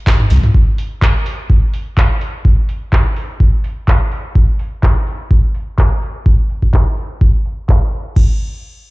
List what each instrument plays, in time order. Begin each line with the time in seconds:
0.07 kick, snare, clap, closed hi-hat, open hi-hat
0.20 closed hi-hat, mid tom
0.30 sub bass C2, snare, closed hi-hat, open hi-hat
0.43 closed hi-hat, mid tom
0.55 kick
0.78 open hi-hat
1.02 kick, clap
1.26 open hi-hat
1.50 kick
1.74 open hi-hat
1.97 kick, clap
2.21 open hi-hat
2.45 kick
2.69 open hi-hat
2.93 kick, clap
3.16 open hi-hat
3.40 kick
3.64 open hi-hat
3.88 kick, clap, open hi-hat
4.12 open hi-hat
4.35 kick
4.59 open hi-hat
4.83 kick, clap
5.07 open hi-hat
5.31 kick
5.55 open hi-hat
5.78 kick, clap
6.02 open hi-hat
6.26 kick
6.50 open hi-hat
6.62 kick
6.74 kick, clap
6.97 open hi-hat
7.21 kick
7.45 open hi-hat
7.69 kick, clap
7.93 open hi-hat
8.16 kick, crash